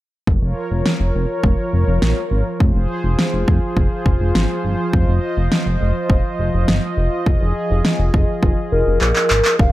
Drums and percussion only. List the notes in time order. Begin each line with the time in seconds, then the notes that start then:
0.27 kick
0.86 snare
1.44 kick
2.02 snare
2.60 kick
3.19 snare
3.48 kick
3.77 kick
4.06 kick
4.35 snare
4.93 kick
5.52 snare
6.10 kick
6.68 snare
7.26 kick
7.85 snare
8.14 kick
8.43 kick
9.01 clap
9.16 clap
9.30 clap
9.45 clap
9.59 kick